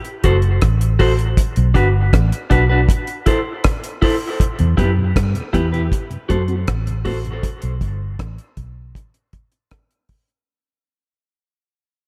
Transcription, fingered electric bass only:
0, 0, Header, 1, 2, 480
1, 0, Start_track
1, 0, Key_signature, 1, "minor"
1, 0, Tempo, 757576
1, 871, Time_signature, 4, 2, 24, 8
1, 7653, End_track
2, 0, Start_track
2, 0, Title_t, "Fingered electric bass"
2, 0, Program_c, 0, 33
2, 156, Note_on_c, 0, 30, 92
2, 370, Note_off_c, 0, 30, 0
2, 398, Note_on_c, 0, 33, 92
2, 848, Note_off_c, 0, 33, 0
2, 996, Note_on_c, 0, 35, 89
2, 1101, Note_off_c, 0, 35, 0
2, 1113, Note_on_c, 0, 31, 97
2, 1327, Note_off_c, 0, 31, 0
2, 1354, Note_on_c, 0, 33, 103
2, 1460, Note_off_c, 0, 33, 0
2, 1594, Note_on_c, 0, 35, 91
2, 1808, Note_off_c, 0, 35, 0
2, 2915, Note_on_c, 0, 40, 86
2, 3020, Note_off_c, 0, 40, 0
2, 3032, Note_on_c, 0, 42, 94
2, 3246, Note_off_c, 0, 42, 0
2, 3273, Note_on_c, 0, 43, 102
2, 3379, Note_off_c, 0, 43, 0
2, 3513, Note_on_c, 0, 40, 97
2, 3727, Note_off_c, 0, 40, 0
2, 3995, Note_on_c, 0, 42, 86
2, 4208, Note_off_c, 0, 42, 0
2, 4238, Note_on_c, 0, 33, 85
2, 4688, Note_off_c, 0, 33, 0
2, 4836, Note_on_c, 0, 35, 81
2, 4941, Note_off_c, 0, 35, 0
2, 4952, Note_on_c, 0, 31, 90
2, 5167, Note_off_c, 0, 31, 0
2, 5195, Note_on_c, 0, 33, 94
2, 5301, Note_off_c, 0, 33, 0
2, 5435, Note_on_c, 0, 35, 84
2, 5649, Note_off_c, 0, 35, 0
2, 7653, End_track
0, 0, End_of_file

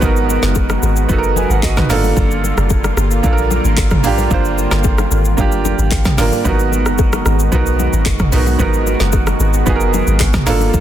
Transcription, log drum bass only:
0, 0, Header, 1, 2, 480
1, 0, Start_track
1, 0, Tempo, 535714
1, 21, Time_signature, 4, 2, 24, 8
1, 9679, End_track
2, 0, Start_track
2, 0, Title_t, "Log drum bass"
2, 0, Program_c, 0, 39
2, 20, Note_on_c, 0, 32, 102
2, 341, Note_off_c, 0, 32, 0
2, 385, Note_on_c, 0, 30, 94
2, 697, Note_off_c, 0, 30, 0
2, 740, Note_on_c, 0, 32, 100
2, 951, Note_off_c, 0, 32, 0
2, 982, Note_on_c, 0, 30, 99
2, 1302, Note_off_c, 0, 30, 0
2, 1343, Note_on_c, 0, 32, 89
2, 1445, Note_off_c, 0, 32, 0
2, 1461, Note_on_c, 0, 32, 92
2, 1672, Note_off_c, 0, 32, 0
2, 1700, Note_on_c, 0, 31, 103
2, 1911, Note_off_c, 0, 31, 0
2, 1943, Note_on_c, 0, 31, 100
2, 2262, Note_off_c, 0, 31, 0
2, 2307, Note_on_c, 0, 30, 94
2, 2618, Note_off_c, 0, 30, 0
2, 2660, Note_on_c, 0, 31, 95
2, 2871, Note_off_c, 0, 31, 0
2, 2904, Note_on_c, 0, 34, 91
2, 3223, Note_off_c, 0, 34, 0
2, 3268, Note_on_c, 0, 32, 88
2, 3368, Note_off_c, 0, 32, 0
2, 3382, Note_on_c, 0, 31, 83
2, 3622, Note_on_c, 0, 34, 93
2, 3635, Note_off_c, 0, 31, 0
2, 3832, Note_off_c, 0, 34, 0
2, 3862, Note_on_c, 0, 31, 108
2, 4182, Note_off_c, 0, 31, 0
2, 4225, Note_on_c, 0, 31, 89
2, 4537, Note_off_c, 0, 31, 0
2, 4582, Note_on_c, 0, 32, 96
2, 4792, Note_off_c, 0, 32, 0
2, 5186, Note_on_c, 0, 32, 94
2, 5287, Note_off_c, 0, 32, 0
2, 5301, Note_on_c, 0, 32, 95
2, 5410, Note_off_c, 0, 32, 0
2, 5541, Note_on_c, 0, 31, 93
2, 5651, Note_off_c, 0, 31, 0
2, 5782, Note_on_c, 0, 32, 105
2, 6147, Note_on_c, 0, 30, 93
2, 6160, Note_off_c, 0, 32, 0
2, 6458, Note_off_c, 0, 30, 0
2, 6503, Note_on_c, 0, 32, 94
2, 6713, Note_off_c, 0, 32, 0
2, 6743, Note_on_c, 0, 35, 85
2, 7063, Note_off_c, 0, 35, 0
2, 7108, Note_on_c, 0, 32, 93
2, 7208, Note_off_c, 0, 32, 0
2, 7222, Note_on_c, 0, 30, 95
2, 7432, Note_off_c, 0, 30, 0
2, 7461, Note_on_c, 0, 35, 99
2, 7672, Note_off_c, 0, 35, 0
2, 7701, Note_on_c, 0, 32, 102
2, 8021, Note_off_c, 0, 32, 0
2, 8068, Note_on_c, 0, 30, 94
2, 8379, Note_off_c, 0, 30, 0
2, 8420, Note_on_c, 0, 32, 98
2, 8631, Note_off_c, 0, 32, 0
2, 8663, Note_on_c, 0, 30, 95
2, 8983, Note_off_c, 0, 30, 0
2, 9026, Note_on_c, 0, 32, 86
2, 9127, Note_off_c, 0, 32, 0
2, 9142, Note_on_c, 0, 32, 98
2, 9352, Note_off_c, 0, 32, 0
2, 9380, Note_on_c, 0, 31, 107
2, 9591, Note_off_c, 0, 31, 0
2, 9621, Note_on_c, 0, 31, 104
2, 9679, Note_off_c, 0, 31, 0
2, 9679, End_track
0, 0, End_of_file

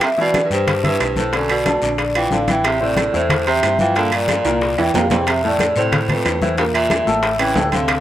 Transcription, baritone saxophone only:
0, 0, Header, 1, 2, 480
1, 0, Start_track
1, 0, Key_signature, 0, "major"
1, 0, Tempo, 327869
1, 28, Time_signature, 4, 2, 24, 8
1, 11715, End_track
2, 0, Start_track
2, 0, Title_t, "Baritone saxophone"
2, 0, Program_c, 0, 67
2, 51, Note_on_c, 0, 48, 87
2, 154, Note_off_c, 0, 48, 0
2, 306, Note_on_c, 0, 47, 86
2, 641, Note_off_c, 0, 47, 0
2, 648, Note_on_c, 0, 43, 62
2, 743, Note_off_c, 0, 43, 0
2, 777, Note_on_c, 0, 43, 73
2, 1212, Note_off_c, 0, 43, 0
2, 1257, Note_on_c, 0, 43, 86
2, 1692, Note_off_c, 0, 43, 0
2, 1733, Note_on_c, 0, 45, 78
2, 1947, Note_off_c, 0, 45, 0
2, 1993, Note_on_c, 0, 42, 77
2, 2198, Note_off_c, 0, 42, 0
2, 2207, Note_on_c, 0, 47, 80
2, 2870, Note_off_c, 0, 47, 0
2, 3161, Note_on_c, 0, 52, 92
2, 3381, Note_off_c, 0, 52, 0
2, 3399, Note_on_c, 0, 50, 83
2, 3620, Note_off_c, 0, 50, 0
2, 3645, Note_on_c, 0, 52, 79
2, 3863, Note_off_c, 0, 52, 0
2, 3889, Note_on_c, 0, 48, 93
2, 4105, Note_off_c, 0, 48, 0
2, 4122, Note_on_c, 0, 45, 84
2, 4565, Note_off_c, 0, 45, 0
2, 4614, Note_on_c, 0, 45, 79
2, 5051, Note_off_c, 0, 45, 0
2, 5086, Note_on_c, 0, 48, 87
2, 5527, Note_off_c, 0, 48, 0
2, 5563, Note_on_c, 0, 52, 83
2, 5782, Note_off_c, 0, 52, 0
2, 5806, Note_on_c, 0, 50, 93
2, 6024, Note_off_c, 0, 50, 0
2, 6050, Note_on_c, 0, 46, 85
2, 6943, Note_off_c, 0, 46, 0
2, 6997, Note_on_c, 0, 52, 83
2, 7219, Note_off_c, 0, 52, 0
2, 7228, Note_on_c, 0, 48, 83
2, 7454, Note_off_c, 0, 48, 0
2, 7470, Note_on_c, 0, 52, 78
2, 7695, Note_off_c, 0, 52, 0
2, 7725, Note_on_c, 0, 48, 89
2, 7943, Note_off_c, 0, 48, 0
2, 7960, Note_on_c, 0, 45, 71
2, 8403, Note_off_c, 0, 45, 0
2, 8451, Note_on_c, 0, 45, 82
2, 8889, Note_off_c, 0, 45, 0
2, 8941, Note_on_c, 0, 41, 83
2, 9374, Note_off_c, 0, 41, 0
2, 9394, Note_on_c, 0, 45, 74
2, 9616, Note_off_c, 0, 45, 0
2, 9632, Note_on_c, 0, 43, 77
2, 9740, Note_off_c, 0, 43, 0
2, 9884, Note_on_c, 0, 46, 85
2, 10546, Note_off_c, 0, 46, 0
2, 10828, Note_on_c, 0, 52, 87
2, 11274, Note_off_c, 0, 52, 0
2, 11303, Note_on_c, 0, 50, 82
2, 11715, Note_off_c, 0, 50, 0
2, 11715, End_track
0, 0, End_of_file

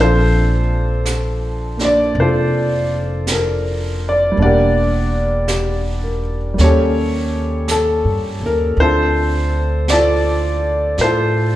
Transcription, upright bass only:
0, 0, Header, 1, 2, 480
1, 0, Start_track
1, 0, Key_signature, -2, "major"
1, 0, Tempo, 1104972
1, 1901, Time_signature, 4, 2, 24, 8
1, 5021, End_track
2, 0, Start_track
2, 0, Title_t, "Upright bass"
2, 0, Program_c, 0, 32
2, 0, Note_on_c, 0, 34, 71
2, 921, Note_off_c, 0, 34, 0
2, 934, Note_on_c, 0, 29, 72
2, 1881, Note_off_c, 0, 29, 0
2, 1899, Note_on_c, 0, 28, 66
2, 2841, Note_off_c, 0, 28, 0
2, 2860, Note_on_c, 0, 39, 75
2, 3478, Note_off_c, 0, 39, 0
2, 3495, Note_on_c, 0, 43, 55
2, 3643, Note_off_c, 0, 43, 0
2, 3651, Note_on_c, 0, 39, 60
2, 3800, Note_off_c, 0, 39, 0
2, 3808, Note_on_c, 0, 38, 70
2, 4751, Note_off_c, 0, 38, 0
2, 4771, Note_on_c, 0, 45, 75
2, 5021, Note_off_c, 0, 45, 0
2, 5021, End_track
0, 0, End_of_file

